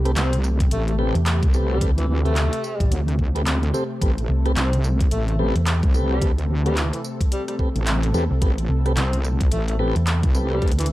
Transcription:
Already playing: C2 C3 A3 C4 G4
0.05 C4 G4 A4 B4, cross-stick, closed hi-hat
0.16 C2 C4, clap, closed hi-hat
0.33 closed hi-hat
0.44 cross-stick, tambourine
0.60 kick, closed hi-hat
0.71 A1 A3, closed hi-hat
0.88 A3, closed hi-hat
0.99 C4 G4 A4 B4
1.15 E2, closed hi-hat
1.26 clap, closed hi-hat
1.43 C2, kick, closed hi-hat
1.54 C4 G4 A4 B4, tambourine
1.70 G3, cross-stick
1.81 D2 C4 G4 A4 B4, kick, closed hi-hat
1.97 E3, closed hi-hat
2.08 D2 E3
2.25 A3 C4 G4 A4 B4, closed hi-hat
2.36 clap, closed hi-hat
2.53 closed hi-hat
2.64 tambourine
2.80 A1, kick, closed hi-hat
2.91 D2, closed hi-hat
3.08 cross-stick, closed hi-hat
3.19 kick
3.35 C4 G4 A4 B4, closed hi-hat
3.47 clap, closed hi-hat
3.63 closed hi-hat
3.74 C4 G4 A4 C5, tambourine
4.01 A1 C4 G4 A4 B4, kick, closed hi-hat
4.18 closed hi-hat
4.29 C2
4.46 C4 G4 A4 B4, cross-stick, closed hi-hat
4.57 C2 C4, clap, closed hi-hat
4.73 closed hi-hat
4.84 cross-stick, tambourine
5.01 kick, closed hi-hat
5.11 A1 A3, closed hi-hat
5.28 A3, closed hi-hat
5.39 C4 G4 A4 B4
5.56 E2, closed hi-hat
5.67 clap, closed hi-hat
5.83 C2, kick, closed hi-hat
5.94 C4 G4 A4 B4, tambourine
6.10 G3, cross-stick
6.22 D2 C4 G4 A4 B4, kick, closed hi-hat
6.38 closed hi-hat
6.49 D2
6.65 G3 C4 G4 A4 B4, closed hi-hat
6.77 E3, clap, closed hi-hat
6.93 E3, closed hi-hat
7.04 tambourine
7.21 kick, closed hi-hat
7.32 G3, closed hi-hat
7.48 G3, cross-stick, closed hi-hat
7.59 C4 G4 A4 B4, kick
7.76 A1, closed hi-hat
7.87 clap, closed hi-hat
8.03 closed hi-hat
8.14 E2 C4 G4 A4 B4, tambourine
8.31 C2
8.42 A1 C4 G4 A4 B4, kick, closed hi-hat
8.58 closed hi-hat
8.69 C2
8.86 C4 G4 A4 B4, cross-stick, closed hi-hat
8.97 C2 C4, clap, closed hi-hat
9.13 closed hi-hat
9.24 cross-stick, tambourine
9.41 kick, closed hi-hat
9.52 A1 A3, closed hi-hat
9.68 A3, closed hi-hat
9.79 C4 G4 A4 B4
9.96 E2, closed hi-hat
10.07 clap, closed hi-hat
10.23 C2, kick, closed hi-hat
10.34 C4 G4 A4 B4, tambourine
10.51 G3, cross-stick
10.62 D2 C4 G4 A4 B4, kick, closed hi-hat
10.68 closed hi-hat
10.72 closed hi-hat
10.79 E3, closed hi-hat
10.81 closed hi-hat
10.86 closed hi-hat

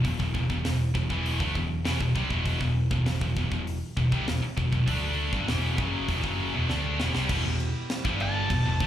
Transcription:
0.04 E1 E2 B2, kick, open hi-hat
0.19 E1 E2 B2, kick
0.34 E1 E2 B2, kick
0.50 E1 E2 B2, kick
0.65 E1 E2 B2, snare, open hi-hat
0.95 E1 E2 B2, kick
1.10 E1 E2 B2 E3, kick
1.26 open hi-hat
1.40 D2 D3 A3, kick
1.55 E1 E2 B2, kick
1.85 E1 E2 B2, snare, open hi-hat
2.00 E1 E2 B2, kick
2.15 C2 C3 G3, kick
2.30 E1 E2 B2, kick
2.45 E1 E2 B2, kick, open hi-hat
2.60 E1 E2 B2, kick
2.91 E1 E2 B2, kick
3.06 E1 E2 B2, snare, open hi-hat
3.21 E1 E2 B2, kick
3.37 E1 E2 B2, kick
3.52 E1 E2 B2, kick
3.67 open hi-hat
3.97 E1 E2 B2, kick
4.12 C2 C3 G3, kick
4.27 E1 E2 B2, snare, open hi-hat
4.42 muted distorted electric guitar stroke, muted picked electric bass stroke
4.57 E1 E2 B2, kick
4.73 E1 E2 B2, kick
4.87 D2 D3 A3 D4, kick, open hi-hat
5.33 G1 G2 D3, kick
5.48 E1 E2 B2 E3, snare, open hi-hat
5.78 F#1 F#2 C#3 F#3, kick
6.09 E1 E2 B2, kick, open hi-hat
6.24 F#1 F#2 C#3 F#3, kick
6.54 E1 E2 B2
6.69 D2 D3 A3 D4, snare
6.99 E1 E2 B2, snare
7.14 C2 C3 G3, snare
7.29 E1 E2 B2 E3 B3 E4 G4, kick, crash
7.45 E1 E2 B2
7.60 crash
7.90 snare, crash
8.05 G1 G2 D3 G3, kick
8.20 A5, crash
8.50 E1 E2 B2, kick, crash
8.65 E1 E2 B2
8.80 D2 D3 A3, kick, crash

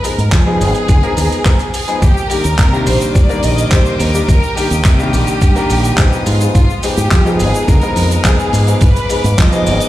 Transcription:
0.04 F3 G#3 B3 D#4 G#4 A#4, open hi-hat, maracas
0.18 G#2, closed hi-hat, maracas
0.32 F3 G#4, kick, clap, closed hi-hat, maracas
0.46 F3 G#3 B3 D#4 G#4
0.61 G#1, open hi-hat, maracas
0.75 closed hi-hat, maracas
0.88 D3, kick, closed hi-hat, maracas
1.03 F3 G#3 B3 D#4 A#4, closed hi-hat
1.17 D#2, open hi-hat, maracas
1.32 closed hi-hat, maracas
1.45 F3 G#3 B3 D#4 A#4, kick, clap, closed hi-hat, maracas
1.59 closed hi-hat, maracas
1.73 G#4, open hi-hat, maracas
1.88 F3 G#3 B3 D#4 G#4, closed hi-hat, maracas
2.01 D#2 G4 A#4 G5 D6 D#6, kick, closed hi-hat, maracas, shaker
2.17 shaker
2.30 D#3 G3 A#3 D4 G4 A#4, open hi-hat, maracas
2.44 D#2, closed hi-hat, maracas, shaker
2.58 C3, kick, clap, closed hi-hat, maracas, shaker
2.72 D#3 G3 A#3 D4 G4, shaker
2.86 A#1 C5, open hi-hat, maracas
3.01 closed hi-hat, maracas, shaker
3.15 G2 D5, kick, closed hi-hat, shaker, maracas
3.29 D#3 G3 A#3 D4 A#4, closed hi-hat, shaker
3.43 A#1 D#5, open hi-hat, maracas
3.58 closed hi-hat, maracas, shaker
3.71 A#1 D#3 G3 A#3 D4 G4 C5, kick, clap, closed hi-hat, maracas, shaker
3.86 shaker
4.00 D#2 A#4, open hi-hat, maracas
4.14 D#3 G3 A#3 D4 G4, closed hi-hat, shaker, maracas
4.28 D#2 A#4, kick, closed hi-hat, maracas, shaker
4.43 shaker
4.56 D#3 G3 A#3 D4 G4, open hi-hat, maracas
4.70 D#2, closed hi-hat, maracas, shaker
4.85 C3 G4, kick, clap, closed hi-hat, shaker, maracas
4.99 D#3 G3 A#3 D4 G4, shaker
5.13 A#1, open hi-hat, maracas
5.27 closed hi-hat, shaker, maracas
5.41 G2, kick, closed hi-hat, shaker, maracas
5.55 D#3 G3 A#3 D4 A#4, closed hi-hat, shaker
5.70 A#1, open hi-hat, maracas
5.84 closed hi-hat, maracas, shaker
5.98 A#1 F3 G#3 B3 D#4 G#4, kick, clap, closed hi-hat, shaker, maracas
6.13 shaker
6.26 G#2 G#3 F4 F5, open hi-hat, maracas
6.40 F3 G#3 B3 D#4 G#4, closed hi-hat, shaker, maracas
6.55 G#2 F4, kick, closed hi-hat, maracas, shaker
6.70 shaker
6.83 F3 G#3 B3 D#4 G4 G#4, open hi-hat, maracas
6.97 G#2, closed hi-hat, shaker, maracas
7.11 F3, kick, clap, closed hi-hat, shaker, maracas
7.25 F3 G#3 B3 D#4 G#4, shaker
7.39 G#1 G#4, open hi-hat, maracas
7.54 closed hi-hat, maracas, shaker
7.68 D3 A#4, kick, closed hi-hat, maracas, shaker
7.81 F3 G#3 B3 D#4 A#4, closed hi-hat, shaker
7.96 F2, open hi-hat, maracas
8.11 closed hi-hat, shaker, maracas
8.24 F2 F3 G#3 B3 D#4 G#4, kick, clap, closed hi-hat, shaker, maracas
8.40 shaker
8.53 G#2 D6, open hi-hat, maracas
8.67 F3 G#3 B3 D#4 G#4, closed hi-hat, shaker, maracas
8.81 G#2 B4, kick, closed hi-hat, shaker, maracas
8.96 closed hi-hat, shaker, maracas
9.09 F3 G#3 B3 D#4 G#4, open hi-hat, maracas
9.24 G#2, closed hi-hat, maracas, shaker
9.38 F3 D#5, kick, clap, closed hi-hat, maracas, shaker
9.52 F3 G#3 B3 D#4 G#4, closed hi-hat, maracas, shaker
9.66 G#1, open hi-hat, maracas
9.80 closed hi-hat, maracas, shaker

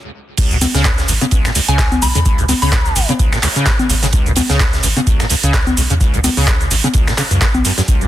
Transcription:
0.38 C#2, kick, closed hi-hat, crash, shaker
0.51 C#2 C#3, closed hi-hat, shaker
0.61 C#2, closed hi-hat, open hi-hat, high conga, shaker
0.75 C#2 C#3, snare, closed hi-hat, shaker
0.85 E2, kick, snare, clap, closed hi-hat, shaker
0.98 snare, closed hi-hat, shaker
1.08 G#1 C#2, closed hi-hat, open hi-hat, shaker
1.21 C#3, closed hi-hat, high conga, shaker
1.31 C#2, kick, closed hi-hat, shaker
1.45 C#3, finger snap, snare, closed hi-hat, shaker
1.55 C#2, closed hi-hat, open hi-hat, shaker
1.68 C#2 C#3 G#5, closed hi-hat, shaker
1.78 E2, kick, snare, clap, closed hi-hat, shaker
1.92 closed hi-hat, high conga, shaker
2.02 B1 C#2 B5, closed hi-hat, open hi-hat, shaker
2.15 E2 C#3, closed hi-hat, shaker
2.26 C#2, kick, closed hi-hat, shaker
2.38 C#2 C#3, closed hi-hat, shaker
2.48 C#2, closed hi-hat, open hi-hat, high conga, shaker
2.62 C#2 C#3 B5, open hi-hat, shaker
2.72 E2, kick, snare, clap, closed hi-hat, shaker
2.86 closed hi-hat, shaker
2.96 G#1 C#2, closed hi-hat, open hi-hat, shaker
3.09 C#3, closed hi-hat, high conga, shaker
3.19 C#2, kick, closed hi-hat, shaker
3.32 C#3, finger snap, snare, closed hi-hat, shaker
3.42 C#2, finger snap, snare, clap, closed hi-hat, open hi-hat, shaker
3.56 C#3, closed hi-hat, shaker
3.66 E2, kick, snare, clap, closed hi-hat, shaker
3.79 closed hi-hat, high conga, shaker
3.89 G#1 C#2, closed hi-hat, open hi-hat, shaker
4.03 C#3, snare, closed hi-hat, shaker
4.13 C#2, kick, closed hi-hat, shaker
4.26 C#2 C#3, closed hi-hat, shaker
4.36 C#2, closed hi-hat, open hi-hat, high conga, shaker
4.50 C#2 C#3, snare, closed hi-hat, shaker
4.60 E2, kick, snare, clap, closed hi-hat, shaker
4.73 snare, closed hi-hat, shaker
4.83 G#1 C#2, closed hi-hat, open hi-hat, shaker
4.97 C#3, closed hi-hat, high conga, shaker
5.07 C#2, kick, closed hi-hat, shaker
5.20 C#3, finger snap, snare, closed hi-hat, shaker
5.29 C#2, closed hi-hat, open hi-hat, shaker
5.43 C#2 C#3, closed hi-hat, shaker
5.54 E2, kick, snare, clap, closed hi-hat, shaker
5.67 closed hi-hat, high conga, shaker
5.77 B1 C#2, open hi-hat, shaker
5.90 E2 C#3, closed hi-hat, shaker
6.01 C#2, kick, closed hi-hat, shaker
6.14 C#2 C#3, closed hi-hat, shaker
6.24 C#2, closed hi-hat, open hi-hat, high conga, shaker
6.37 C#2 C#3, open hi-hat, shaker
6.48 E2, kick, snare, clap, closed hi-hat, shaker
6.61 closed hi-hat, shaker
6.71 G#1 C#2, closed hi-hat, open hi-hat, shaker
6.84 C#3, closed hi-hat, high conga, shaker
6.94 C#2, kick, closed hi-hat, shaker
7.07 C#3, finger snap, snare, closed hi-hat, shaker
7.17 C#3, finger snap, snare, clap, closed hi-hat, open hi-hat, shaker
7.31 C#2 F#2, closed hi-hat, shaker
7.41 G#2, kick, snare, clap, closed hi-hat, shaker
7.54 B1, closed hi-hat, high conga, shaker
7.65 F#2, closed hi-hat, open hi-hat, shaker
7.78 F#2, snare, closed hi-hat, shaker
7.88 C#2, kick, closed hi-hat, shaker
8.01 C#2 C#3, closed hi-hat, shaker

